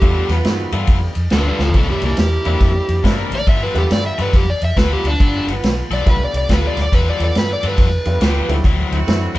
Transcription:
Already playing: G4
0.02 E2 G3 A3 B3 D4 F4 A4, kick, ride
0.29 E2 B3 F4 B4, snare, ride
0.45 G2 G#3 A#3 C4 D#4 F#4, snare, ride
0.72 G2 G3 A3 B3 D4 F4 A4, ride
0.87 F2, kick, snare, ride
1.15 F2, ride
1.30 D2 G3 B3 D4 F4 A4 B4, snare, ride
1.48 D4 B4
1.59 D2 F4, snare
1.63 A4
1.69 floor tom
1.74 C2 C3 A#3 C4 D4 E4 A4, kick, ride
1.90 A#3 G4
2.02 C2 A#3 D4 E4 G4 A#4, ride
2.17 E2 G4, snare, ride
2.45 E2 C3 G3 A#3 C4 D4 E4, ride
2.60 F2, kick, snare, ride
2.88 F2, ride
3.03 G2 C3 G3 A#3 C4 D4 E4 A#4, kick, snare, ride
3.30 A1, ride
3.35 D5
3.47 G1 G3 B3 F4 A4 E5, kick, ride
3.63 B4
3.74 E2 G3 A3 B3 D4 F4 G4 A4, ride
3.91 G2 D5, snare, ride
4.06 E5
4.18 G2 G3 B3 F4 A4 B4, ride
4.33 F2 G4, kick, snare, ride
4.50 D5
4.61 F2 E5, ride
4.76 D2 G3 B3 F4 A4 B4, kick, snare, ride
4.93 G4
5.04 D2 D4, ride
5.20 G1 G3 B3 F4 A4, kick, ride
5.47 G1 B3 F4 B4, ride
5.63 B1, snare, ride
5.90 B1 G3 B3 F4 A4 D5, ride
6.06 C2 G3 A3 B3 D4 F4 B4, kick, snare, ride
6.24 D5
6.33 C2, ride
6.38 D5
6.49 D2 G3 B3 F4 A4, kick, snare, ride
6.53 B4
6.67 D5
6.77 D2, snare, ride
6.82 D5
6.92 E2 G3 B3 F4 A4 B4, kick, snare, ride
7.10 D5
7.19 E2 B3 F4 A4, ride
7.24 D5
7.35 G2 B4, snare, ride
7.53 D5
7.63 G2 G3 B3 F4 A4, ride
7.67 B4
7.78 F2, kick, snare, ride
8.05 F2 G3 A3 B3 D4 F4, ride
8.21 D2 G3 B3 F4 G4 A4, snare, ride
8.48 D2 F#3 A3 C4 D4 E4, ride
8.64 D2 D3 F#3 C4 E4, kick, snare, ride
8.92 D2 C4 E4 F#4, ride
9.07 F#2 F#3 A3 C4 D4 E4, snare, ride
9.35 F#2 E4, ride

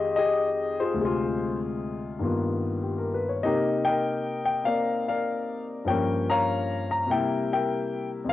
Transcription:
Already playing: F2 D#3 G#3 G4 G#4 C5 D#5 G5
0.16 G4 G#4 D#5
0.80 F4 G#4 C5
0.94 D2 C3
1.01 G#3 F4
2.19 G2 D#3 A#3 B3
2.24 F4
2.83 G4
2.98 A#4
3.14 B4
3.29 C#5
3.43 C3 A#3 D#4 G4 A#4 D#5
3.85 A#4 D#5 G5
4.45 G5
4.64 A#3 C4 A#4 D5 F5
5.08 A#4 D5 F5
5.85 G2 F3 A#3 A#4 C#5 G5
5.89 C#4
6.30 C#5 F5 A#5
6.91 A#5
7.06 C3 G3 A#3
7.11 E4 A#4 E5 G5
7.53 A#4 E5 G5
8.25 F2 D#3
8.29 F5

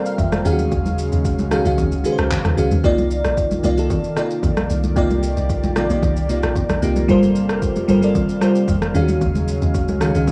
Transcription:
Already playing: C3 G3 A#3 F4 A4 A#4 C5 D5 F5 G5 A#5
0.06 F5, shaker
0.18 F1 E5, kick, low conga, shaker
0.32 D5, cross-stick, high conga, shaker
0.44 D#2 C#3 D#3 F#3 G#3 C#4 F4 G#4 F5, shaker
0.52 F#4
0.59 high conga, shaker
0.72 D#2, kick, shaker
0.86 high conga, shaker
0.98 shaker
1.12 D#2, shaker
1.25 kick, shaker
1.39 C#2, high conga, shaker
1.51 D#3 C#4 F#4 G#4 F5, cross-stick, high conga, shaker
1.64 C#2 D#3 C#4 F#4 G#4 F5, shaker
1.78 D#2, kick, low conga, shaker
1.92 C#2, shaker
2.04 D#3 C#4 F#4 G#4 B4, shaker
2.12 C5
2.18 C#2, cross-stick, shaker
2.31 kick, clap, low conga, shaker
2.45 D#2, cross-stick, high conga, shaker
2.57 C#2 D#3 C#4 F#4 G#4 F5, shaker
2.71 D#2, high conga, shaker
2.83 C2 C3 D#3 A#3 D#4 F4 D5, kick, shaker
2.98 high conga, shaker
3.11 shaker
3.25 A#1, cross-stick, shaker
3.37 kick, shaker
3.51 high conga, shaker
3.63 C2 C3 A#3 D#4 F4 D5, high conga, shaker
3.77 C3 A#3 D#4 F4 A4, shaker
3.90 kick, low conga, shaker
4.04 shaker
4.16 C3 A#3 D#4 F4 D5, cross-stick, shaker
4.31 shaker
4.43 A#1, kick, low conga, shaker
4.57 cross-stick, high conga, shaker
4.70 C2, shaker
4.84 high conga, shaker
4.96 C2 C3 A#3 D#4 F4 G4 D5, kick, shaker
5.11 high conga, shaker
5.23 shaker
5.37 C2, shaker
5.50 kick, shaker
5.63 A#1, high conga, shaker
5.75 C3 A#3 D#4 F4 D5, cross-stick, high conga, shaker
5.89 A#1 C3 A#3 D#4 F4 D5, shaker
6.03 C2, kick, low conga, shaker
6.17 shaker
6.29 C3 A#3 D#4 F4 D5, shaker
6.43 A#1, cross-stick, shaker
6.56 kick, low conga, shaker
6.70 A#1, cross-stick, high conga, shaker
6.82 C2 C3 A#3 D#4 F4 G4, shaker
6.96 high conga, shaker
7.08 G1 C3 G3 F4 A4 A#4 C5 F5, kick, shaker
7.23 high conga, shaker
7.36 shaker
7.49 F1, cross-stick, shaker
7.62 kick, shaker
7.76 high conga, shaker
7.88 G1 G3 F4 A4 A#4 C5, high conga, shaker
8.02 G3 F4 A4 A#4 D5, shaker
8.15 kick, low conga, shaker
8.29 shaker
8.41 G3 F4 A4 A#4 C5, cross-stick, shaker
8.55 shaker
8.68 F1, kick, low conga, shaker
8.82 cross-stick, high conga, shaker
8.94 D#2 C#3 D#3 F#3 G#3 C#4 F4 G#4 F5, shaker
9.02 F#4
9.08 high conga, shaker
9.21 D#2, kick, shaker
9.35 high conga, shaker
9.48 shaker
9.62 D#2, shaker
9.74 kick, shaker
9.88 C#2, high conga, shaker
10.00 D#3 C#4 F#4 G#4 F5, cross-stick, high conga, shaker
10.14 C#2 D#3 C#4 F#4 G#4 F5, shaker
10.27 D#2, kick, high tom, low conga, shaker

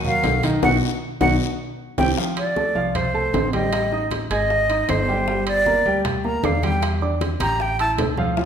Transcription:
Already playing: D#2
0.04 F#3 F#4 A#4 F5, high conga, low conga
0.23 B1, high bongo, low bongo, high conga, high timbale, low timbale, short guiro
0.43 D#3 D#4 D#5, high bongo, high conga, high timbale, short guiro
0.63 B1 B3 D#4 F#4 F#5, low bongo, high conga, high timbale, long guiro
1.21 B1 B3 D#4 F#4 F#5, low bongo, high conga, high timbale, long guiro
1.98 C2 C4 E4 G4 G5, low bongo, high conga, high timbale, long guiro
2.17 F3 F4 F5, high bongo, high conga
2.37 D5, high bongo, high conga, high timbale
2.56 A3 A4 A5, high bongo, high conga, low timbale
2.75 C2 F3 F4 F5, high bongo
2.95 C5, high bongo, high conga, low conga, high timbale
3.14 A3 A4 A5, high conga
3.33 A1 C4 C5 C6, high bongo, low bongo, high conga, high timbale, low timbale
3.53 G3 G4 D#5 G5, high bongo, high conga, high timbale
3.73 high bongo, high timbale
3.92 D#4 D#5 D#6, high bongo, high conga
4.11 high bongo, high conga, high timbale, low timbale
4.30 G#1 G#4 D#5 G#5 G#6, high bongo, high conga, high timbale
4.50 high bongo, high conga
4.69 D#4 D#5 D#6, high conga, high timbale
4.88 G1 C5, high bongo, low bongo, high conga, high timbale, low timbale
5.08 G3 G4 G5, high bongo, high conga
5.27 G3 G4 G5, high bongo, high conga
5.47 D5, high bongo, high conga, high timbale
5.66 A#3 A#4 A#5, high bongo, high conga, low timbale
5.85 D2 G3 G4 G5, high bongo
6.05 high bongo, high conga, low conga, high timbale
6.24 A#3 A#4 A#5, high conga
6.43 E2 D4 D5 F5 D6, high bongo, low bongo, high conga, high timbale, low timbale
6.63 G3 G4 G5, high bongo, high conga, high timbale
6.82 high bongo, high conga, high timbale
7.01 D4 D5 D6, high bongo, high conga
7.21 high bongo, high conga, high timbale, low timbale
7.40 A1 G4 G5 A#5 G6, high bongo, high conga, high timbale
7.60 G5, high bongo
7.79 E4 E5 A5 E6, high timbale
7.98 D2, high bongo, low bongo, low conga, high timbale, low timbale
8.17 F3 F4 F5, high bongo, low conga
8.37 F3 F4 F5, high bongo, high conga, long guiro

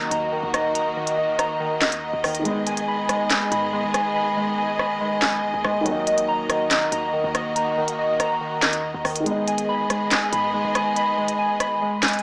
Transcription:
Already playing: D#3 F#3 A#3 D#4 F#4 D#5 A#5
0.11 D#2 A#5, closed hi-hat
0.32 D#3
0.43 D#2
0.54 D#5, cross-stick, closed hi-hat
0.75 A#5, closed hi-hat
0.97 D#3
1.07 closed hi-hat
1.18 D#5
1.28 F#2
1.39 A#5, cross-stick, closed hi-hat
1.50 D#2
1.60 D#3
1.81 D#2 D#5, snare, clap, closed hi-hat
1.92 closed hi-hat
2.13 D#2
2.24 D#2 D#3, cross-stick, open hi-hat
2.35 closed hi-hat
2.40 D#3 G#3
2.45 G#1 G#3 B3 G#4, closed hi-hat
2.50 D#4
2.67 G#5, closed hi-hat
2.77 closed hi-hat
2.88 B5
3.09 G#3, cross-stick, closed hi-hat
3.30 G#5, snare, clap, closed hi-hat
3.52 G#2 B5, closed hi-hat
3.73 G#3
3.84 G#1
3.94 G#5, cross-stick, closed hi-hat
4.15 B5
4.37 G#3
4.58 G#5
4.79 B5, cross-stick
5.01 G#3
5.22 B1 G#5, snare, clap
5.54 D#2
5.64 D#2 G#3, cross-stick
5.81 D#3 F#3
5.85 D#2 D#3 A#3 F#4, closed hi-hat
5.92 D#4
6.07 D#5, closed hi-hat
6.18 closed hi-hat
6.28 A#5
6.49 D#3, cross-stick, closed hi-hat
6.71 D#5, snare, clap, closed hi-hat
6.92 D#2 A#5, closed hi-hat
7.13 D#3
7.24 D#2
7.35 D#5, cross-stick, closed hi-hat
7.56 A#5, closed hi-hat
7.78 D#3
7.88 closed hi-hat
7.99 D#5
8.09 F#2
8.20 A#5, cross-stick, closed hi-hat
8.30 D#2
8.41 D#3
8.62 D#2 D#5, snare, clap, closed hi-hat
8.73 closed hi-hat
8.94 D#2
9.05 D#2 D#3, cross-stick, open hi-hat
9.16 closed hi-hat
9.20 D#3 G#3
9.26 G#1 D#3 G#3 B3 G#4 D#5, closed hi-hat
9.31 D#4
9.48 G#5, closed hi-hat
9.58 closed hi-hat
9.69 B5
9.90 G#3, cross-stick, closed hi-hat
10.11 G#5, snare, clap, closed hi-hat
10.33 G#2 B5, closed hi-hat
10.54 G#3
10.65 G#1
10.75 G#5, cross-stick, closed hi-hat
10.96 B5, closed hi-hat
11.18 G#3
11.28 closed hi-hat
11.39 G#5
11.60 B5, cross-stick, closed hi-hat
11.82 G#3
12.03 B1 G#5, snare, clap, closed hi-hat
12.08 closed hi-hat
12.13 closed hi-hat
12.19 closed hi-hat

